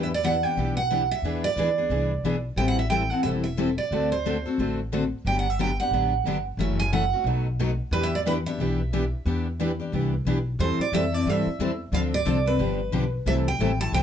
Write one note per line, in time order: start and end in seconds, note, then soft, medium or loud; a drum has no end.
0.00 0.43 E2 medium
0.00 0.10 E3 medium
0.00 0.10 B3 medium
0.00 0.11 D4 medium
0.00 0.11 G4 medium
0.00 0.11 B4 medium
0.00 0.08 E5 medium
0.14 0.24 D5 medium
0.24 0.34 E3 medium
0.24 0.35 B3 medium
0.24 0.35 D4 medium
0.24 0.35 G4 medium
0.24 0.36 B4 medium
0.24 0.43 F#5 medium
0.43 0.56 B3 soft
0.43 0.57 D4 soft
0.43 0.56 G4 soft
0.43 0.76 G5 medium
0.57 1.10 B1 medium
0.57 0.77 E3 medium
0.57 0.77 B3 medium
0.57 0.78 D4 medium
0.57 0.78 G4 medium
0.57 0.79 B4 medium
0.77 1.08 F#5 medium
0.91 1.01 E3 medium
0.91 1.01 B3 medium
0.91 1.02 D4 medium
0.91 1.02 G4 medium
0.91 1.02 B4 medium
1.11 1.45 E5 medium
1.22 1.50 E2 medium
1.22 1.44 E3 medium
1.22 1.45 B3 medium
1.22 1.45 D4 medium
1.22 1.45 G#4 medium
1.22 1.45 B4 medium
1.44 2.40 D5 medium
1.56 1.85 D2 medium
1.56 1.68 E3 medium
1.56 1.68 B3 medium
1.56 1.68 D4 medium
1.56 1.69 G#4 medium
1.56 1.69 B4 medium
1.78 1.90 B3 soft
1.78 1.90 D4 soft
1.78 1.90 G#4 soft
1.89 2.18 C2 medium
1.89 2.11 E3 medium
1.89 2.11 B3 soft
1.89 2.11 D4 medium
1.89 2.11 G#4 medium
1.89 2.12 B4 medium
2.23 2.52 B1 medium
2.23 2.35 E3 medium
2.23 2.35 B3 medium
2.23 2.36 D4 medium
2.23 2.36 G#4 medium
2.23 2.36 B4 medium
2.56 3.10 A1 medium
2.56 2.78 E3 soft
2.56 2.78 G3 medium
2.56 2.78 C4 medium
2.56 2.78 E4 medium
2.56 2.78 A4 medium
2.56 2.68 G5 medium
2.68 2.79 F#5 medium
2.79 2.89 E5 medium
2.90 3.02 E3 medium
2.90 3.02 G3 medium
2.90 3.02 C4 medium
2.90 3.02 E4 medium
2.90 3.02 A4 medium
2.90 3.10 G5 medium
3.10 3.24 C4 soft
3.10 3.24 E4 soft
3.10 3.24 A4 medium
3.10 3.23 F#5 medium
3.23 3.77 E1 medium
3.23 3.45 E3 medium
3.23 3.45 G3 medium
3.23 3.45 C4 soft
3.23 3.45 E4 medium
3.23 3.45 A4 soft
3.23 3.29 E5 medium
3.44 3.75 E5 medium
3.57 3.68 E3 medium
3.57 3.69 G3 medium
3.57 3.69 C4 medium
3.57 3.69 E4 medium
3.57 3.69 A4 medium
3.78 4.11 D5 medium
3.91 4.44 D2 medium
3.91 4.12 D3 medium
3.91 4.12 A3 medium
3.91 4.12 C4 medium
3.91 4.12 F#4 medium
3.91 4.12 A4 medium
4.12 4.74 C5 medium
4.26 4.36 D3 medium
4.26 4.36 A3 medium
4.26 4.36 C4 medium
4.26 4.37 F#4 medium
4.26 4.37 A4 medium
4.46 4.58 C4 soft
4.46 4.58 F#4 soft
4.46 4.58 A4 medium
4.58 5.11 A1 medium
4.58 4.79 D3 soft
4.58 4.79 A3 medium
4.58 4.79 C4 soft
4.58 4.79 F#4 medium
4.58 4.79 A4 medium
4.93 5.03 D3 medium
4.93 5.03 A3 medium
4.93 5.03 C4 medium
4.93 5.03 F#4 medium
4.93 5.03 A4 medium
5.25 5.78 G1 medium
5.25 5.46 D3 soft
5.25 5.46 F#3 medium
5.25 5.46 B3 medium
5.25 5.46 D4 medium
5.25 5.46 G4 medium
5.25 5.36 G5 medium
5.39 5.50 F#5 medium
5.50 5.60 E5 medium
5.59 5.69 D3 medium
5.59 5.70 F#3 medium
5.59 5.70 B3 medium
5.59 5.70 D4 medium
5.59 5.70 G4 medium
5.59 5.79 G5 medium
5.80 5.92 B3 soft
5.80 5.92 D4 soft
5.80 5.92 G4 medium
5.80 6.42 F#5 medium
5.91 6.19 A1 medium
5.91 6.13 D3 soft
5.91 6.13 F#3 soft
5.91 6.13 B3 medium
5.91 6.13 D4 medium
5.91 6.13 G4 medium
6.24 6.53 G1 medium
6.24 6.37 D3 medium
6.24 6.37 F#3 medium
6.24 6.37 B3 medium
6.24 6.37 D4 medium
6.24 6.37 G4 medium
6.57 7.11 F#1 medium
6.57 6.79 C#3 medium
6.57 6.79 E3 medium
6.57 6.79 F#3 medium
6.57 6.79 A3 medium
6.57 6.79 C#4 medium
6.57 6.79 E4 medium
6.57 6.79 F#4 medium
6.57 6.80 A4 medium
6.57 6.79 E5 medium
6.79 6.93 G#5 medium
6.92 7.03 C#3 medium
6.92 7.03 E3 medium
6.92 7.03 F#3 medium
6.92 7.03 A3 medium
6.92 7.03 C#4 medium
6.92 7.03 E4 medium
6.92 7.04 F#4 medium
6.92 7.03 A4 medium
6.92 7.23 F#5 medium
7.13 7.26 A3 soft
7.13 7.26 C#4 soft
7.13 7.25 F#4 medium
7.24 7.78 B1 medium
7.24 7.46 B2 medium
7.24 7.46 F#3 soft
7.24 7.46 A3 soft
7.24 7.46 D#4 medium
7.24 7.47 F#4 medium
7.24 7.46 B4 medium
7.59 7.70 B2 medium
7.59 7.70 F#3 medium
7.59 7.70 A3 medium
7.59 7.70 D#4 medium
7.59 7.70 F#4 medium
7.59 7.70 B4 medium
7.91 8.45 E2 medium
7.91 8.13 E3 medium
7.91 8.13 B3 medium
7.91 8.13 D4 medium
7.91 8.13 G4 medium
7.91 8.04 B4 medium
7.91 8.13 B4 medium
8.03 8.15 E5 medium
8.15 8.20 D5 medium
8.26 8.37 E3 medium
8.26 8.37 B3 medium
8.26 8.37 D4 medium
8.26 8.37 G4 medium
8.26 8.37 B4 loud
8.26 8.33 B4 medium
8.46 8.59 B3 soft
8.46 8.59 D4 soft
8.46 8.59 G4 soft
8.46 10.22 E5 medium
8.59 9.12 B1 medium
8.59 8.80 E3 medium
8.59 8.80 B3 medium
8.59 8.80 D4 medium
8.59 8.80 G4 medium
8.59 8.80 B4 medium
8.93 9.03 E3 medium
8.93 9.04 B3 medium
8.93 9.04 D4 medium
8.93 9.04 G4 medium
8.93 9.04 B4 medium
9.26 9.79 E2 medium
9.26 9.46 E3 medium
9.26 9.46 B3 medium
9.26 9.46 D4 medium
9.26 9.47 G4 medium
9.26 9.47 B4 medium
9.60 9.70 E3 medium
9.60 9.70 B3 medium
9.60 9.70 D4 medium
9.60 9.71 G4 medium
9.60 9.71 B4 medium
9.80 9.92 B3 soft
9.80 9.93 D4 soft
9.80 9.92 G4 soft
9.92 10.21 C2 medium
9.92 10.13 E3 soft
9.92 10.13 B3 soft
9.92 10.13 D4 soft
9.92 10.13 G4 medium
9.92 10.14 B4 medium
10.25 10.54 B1 medium
10.25 10.37 E3 medium
10.25 10.37 B3 medium
10.25 10.37 D4 medium
10.25 10.37 G4 medium
10.25 10.38 B4 medium
10.59 10.78 E2 medium
10.59 10.80 E3 medium
10.59 10.80 G3 medium
10.59 10.80 C4 medium
10.59 10.80 E4 medium
10.59 10.80 A4 medium
10.59 10.80 C5 medium
10.79 10.93 D5 medium
10.79 muted upright bass stroke soft
10.92 11.24 F2 medium
10.92 11.03 E3 medium
10.92 11.04 G3 medium
10.92 11.04 C4 medium
10.92 11.04 E4 medium
10.92 11.04 A4 medium
10.92 11.14 E5 medium
11.12 11.26 C4 soft
11.12 11.26 E4 soft
11.12 11.25 A4 medium
11.12 11.29 D5 medium
11.25 11.44 G2 medium
11.25 11.47 E3 medium
11.25 11.47 G3 medium
11.25 11.47 C4 medium
11.25 11.47 E4 medium
11.25 11.47 A4 medium
11.29 11.81 E5 medium
11.46 muted upright bass stroke soft
11.59 11.91 E2 medium
11.59 11.70 E3 medium
11.59 11.71 G3 medium
11.59 11.71 C4 medium
11.59 11.71 E4 medium
11.59 11.71 A4 medium
11.92 12.24 D2 medium
11.92 12.13 D3 medium
11.92 12.13 F3 medium
11.92 12.13 C4 medium
11.92 12.13 D4 medium
11.92 12.13 A4 medium
11.92 11.99 F5 loud
12.14 12.44 D5 medium
12.25 12.58 C2 medium
12.25 12.36 D3 medium
12.25 12.37 F3 medium
12.25 12.37 C4 medium
12.25 12.37 D4 loud
12.25 12.37 A4 medium
12.46 12.59 C4 soft
12.46 12.58 D4 soft
12.46 12.59 A4 medium
12.46 13.09 B4 medium
12.59 12.91 G1 medium
12.59 12.79 D3 soft
12.59 12.79 F3 medium
12.59 12.79 B3 medium
12.59 12.80 D4 medium
12.59 12.80 G4 medium
12.92 13.24 B1 medium
12.92 13.03 D3 medium
12.92 13.03 F3 medium
12.92 13.03 B3 medium
12.92 13.04 D4 medium
12.92 13.04 G4 medium
13.26 13.58 C2 medium
13.26 13.46 C3 medium
13.26 13.46 E3 medium
13.26 13.47 G3 medium
13.26 13.46 A3 medium
13.26 13.47 C4 medium
13.26 13.47 E4 medium
13.26 13.47 A4 medium
13.26 13.33 E5 medium
13.48 13.80 G5 medium
13.59 13.91 A1 medium
13.59 13.70 C3 medium
13.59 13.71 E3 medium
13.59 13.71 G3 medium
13.59 13.71 A3 medium
13.59 13.71 C4 medium
13.59 13.71 E4 medium
13.59 13.71 A4 medium
13.80 13.92 A3 soft
13.80 13.93 E4 soft
13.80 13.92 A4 medium
13.80 13.94 A5 loud
13.92 14.03 C2 medium
13.92 14.03 C3 medium
13.92 14.03 E3 medium
13.92 14.03 G3 medium
13.92 14.03 A3 medium
13.92 14.03 C4 medium
13.92 14.03 E4 medium
13.92 14.03 A4 medium
13.92 13.99 G5 loud